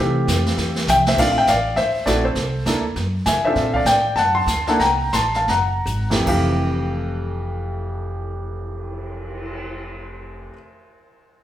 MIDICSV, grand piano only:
0, 0, Header, 1, 2, 480
1, 0, Start_track
1, 0, Key_signature, -1, "major"
1, 0, Tempo, 297324
1, 1894, Time_signature, 4, 2, 24, 8
1, 6215, Tempo, 319319
1, 8135, Tempo, 368098
1, 9095, Tempo, 407886
1, 9575, Tempo, 424628
1, 15412, End_track
2, 0, Start_track
2, 0, Title_t, "Grand piano"
2, 0, Program_c, 0, 0
2, 0, Note_on_c, 0, 52, 57
2, 0, Note_on_c, 0, 57, 66
2, 0, Note_on_c, 0, 60, 58
2, 0, Note_on_c, 0, 67, 68
2, 0, Note_on_c, 0, 74, 62
2, 0, Note_on_c, 0, 77, 78
2, 1298, Note_off_c, 0, 57, 0
2, 1305, Note_off_c, 0, 60, 0
2, 1314, Note_off_c, 0, 52, 0
2, 1314, Note_off_c, 0, 67, 0
2, 1348, Note_off_c, 0, 77, 0
2, 1371, Note_off_c, 0, 74, 0
2, 1444, Note_on_c, 0, 76, 72
2, 1448, Note_on_c, 0, 79, 96
2, 1525, Note_off_c, 0, 76, 0
2, 1529, Note_off_c, 0, 79, 0
2, 1744, Note_on_c, 0, 76, 92
2, 1750, Note_on_c, 0, 72, 68
2, 1901, Note_on_c, 0, 57, 60
2, 1902, Note_off_c, 0, 72, 0
2, 1910, Note_on_c, 0, 60, 54
2, 1915, Note_off_c, 0, 76, 0
2, 1915, Note_on_c, 0, 62, 55
2, 1924, Note_on_c, 0, 65, 68
2, 1925, Note_on_c, 0, 77, 85
2, 1932, Note_on_c, 0, 74, 64
2, 2099, Note_off_c, 0, 77, 0
2, 2121, Note_off_c, 0, 74, 0
2, 2123, Note_on_c, 0, 77, 67
2, 2164, Note_off_c, 0, 57, 0
2, 2169, Note_off_c, 0, 60, 0
2, 2172, Note_off_c, 0, 62, 0
2, 2176, Note_off_c, 0, 65, 0
2, 2194, Note_off_c, 0, 77, 0
2, 2225, Note_on_c, 0, 79, 90
2, 2241, Note_on_c, 0, 76, 68
2, 2379, Note_off_c, 0, 79, 0
2, 2387, Note_off_c, 0, 76, 0
2, 2397, Note_on_c, 0, 77, 89
2, 2416, Note_on_c, 0, 74, 71
2, 2832, Note_off_c, 0, 77, 0
2, 2843, Note_off_c, 0, 74, 0
2, 2847, Note_on_c, 0, 76, 87
2, 2869, Note_on_c, 0, 72, 72
2, 3296, Note_off_c, 0, 76, 0
2, 3308, Note_off_c, 0, 72, 0
2, 3321, Note_on_c, 0, 57, 64
2, 3323, Note_on_c, 0, 74, 70
2, 3337, Note_on_c, 0, 60, 57
2, 3352, Note_on_c, 0, 64, 61
2, 3361, Note_on_c, 0, 66, 65
2, 3362, Note_on_c, 0, 69, 59
2, 3594, Note_off_c, 0, 57, 0
2, 3603, Note_off_c, 0, 60, 0
2, 3610, Note_off_c, 0, 64, 0
2, 3614, Note_off_c, 0, 66, 0
2, 3625, Note_off_c, 0, 69, 0
2, 3626, Note_on_c, 0, 72, 70
2, 3634, Note_off_c, 0, 74, 0
2, 3660, Note_on_c, 0, 69, 54
2, 4245, Note_off_c, 0, 72, 0
2, 4263, Note_off_c, 0, 69, 0
2, 4293, Note_on_c, 0, 58, 57
2, 4307, Note_on_c, 0, 62, 50
2, 4308, Note_on_c, 0, 64, 53
2, 4325, Note_on_c, 0, 69, 64
2, 4560, Note_off_c, 0, 58, 0
2, 4567, Note_off_c, 0, 62, 0
2, 4567, Note_off_c, 0, 64, 0
2, 4576, Note_off_c, 0, 69, 0
2, 5260, Note_on_c, 0, 80, 77
2, 5299, Note_on_c, 0, 76, 64
2, 5533, Note_off_c, 0, 80, 0
2, 5540, Note_off_c, 0, 76, 0
2, 5564, Note_on_c, 0, 76, 87
2, 5573, Note_on_c, 0, 60, 68
2, 5584, Note_on_c, 0, 62, 59
2, 5593, Note_on_c, 0, 72, 61
2, 5599, Note_on_c, 0, 65, 59
2, 5605, Note_on_c, 0, 69, 68
2, 6020, Note_off_c, 0, 72, 0
2, 6031, Note_on_c, 0, 77, 80
2, 6052, Note_off_c, 0, 76, 0
2, 6071, Note_on_c, 0, 74, 66
2, 6190, Note_off_c, 0, 60, 0
2, 6195, Note_off_c, 0, 62, 0
2, 6203, Note_off_c, 0, 65, 0
2, 6206, Note_off_c, 0, 69, 0
2, 6221, Note_off_c, 0, 77, 0
2, 6223, Note_off_c, 0, 74, 0
2, 6235, Note_on_c, 0, 79, 85
2, 6262, Note_on_c, 0, 74, 66
2, 6665, Note_off_c, 0, 74, 0
2, 6678, Note_on_c, 0, 81, 95
2, 6695, Note_off_c, 0, 79, 0
2, 6717, Note_on_c, 0, 78, 77
2, 6964, Note_off_c, 0, 78, 0
2, 6964, Note_on_c, 0, 84, 101
2, 6971, Note_off_c, 0, 81, 0
2, 6994, Note_on_c, 0, 81, 68
2, 7424, Note_off_c, 0, 81, 0
2, 7452, Note_on_c, 0, 58, 69
2, 7456, Note_off_c, 0, 84, 0
2, 7456, Note_on_c, 0, 62, 57
2, 7461, Note_on_c, 0, 81, 80
2, 7471, Note_on_c, 0, 64, 58
2, 7477, Note_on_c, 0, 69, 70
2, 7495, Note_on_c, 0, 78, 70
2, 7614, Note_off_c, 0, 58, 0
2, 7617, Note_off_c, 0, 62, 0
2, 7624, Note_off_c, 0, 64, 0
2, 7626, Note_off_c, 0, 81, 0
2, 7627, Note_off_c, 0, 69, 0
2, 7637, Note_on_c, 0, 82, 85
2, 7644, Note_off_c, 0, 78, 0
2, 7653, Note_on_c, 0, 79, 65
2, 8105, Note_off_c, 0, 82, 0
2, 8114, Note_off_c, 0, 79, 0
2, 8140, Note_on_c, 0, 84, 85
2, 8156, Note_on_c, 0, 81, 73
2, 8411, Note_off_c, 0, 81, 0
2, 8430, Note_off_c, 0, 84, 0
2, 8435, Note_on_c, 0, 81, 77
2, 8439, Note_on_c, 0, 77, 58
2, 8596, Note_off_c, 0, 81, 0
2, 8598, Note_off_c, 0, 77, 0
2, 8610, Note_on_c, 0, 82, 74
2, 8625, Note_on_c, 0, 78, 61
2, 9345, Note_off_c, 0, 82, 0
2, 9352, Note_off_c, 0, 78, 0
2, 9376, Note_on_c, 0, 41, 55
2, 9381, Note_on_c, 0, 57, 52
2, 9389, Note_on_c, 0, 60, 52
2, 9393, Note_on_c, 0, 64, 53
2, 9401, Note_on_c, 0, 67, 62
2, 9541, Note_off_c, 0, 41, 0
2, 9559, Note_on_c, 0, 41, 59
2, 9563, Note_off_c, 0, 57, 0
2, 9571, Note_on_c, 0, 52, 60
2, 9577, Note_off_c, 0, 67, 0
2, 9580, Note_on_c, 0, 57, 55
2, 9583, Note_on_c, 0, 77, 67
2, 9594, Note_on_c, 0, 67, 72
2, 10020, Note_off_c, 0, 60, 0
2, 10022, Note_off_c, 0, 64, 0
2, 14342, Note_off_c, 0, 77, 0
2, 14364, Note_off_c, 0, 41, 0
2, 14375, Note_off_c, 0, 52, 0
2, 14385, Note_off_c, 0, 57, 0
2, 14398, Note_off_c, 0, 67, 0
2, 15412, End_track
0, 0, End_of_file